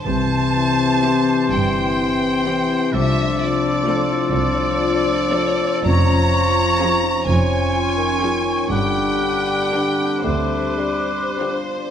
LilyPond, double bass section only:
\new Staff \with { instrumentName = "Double bass section" } { \clef bass \time 6/8 \key c \major \tempo 4. = 42 c,4. g,,4. | c,4. c,4. | f,,4. f,,4. | g,,4. d,4. | }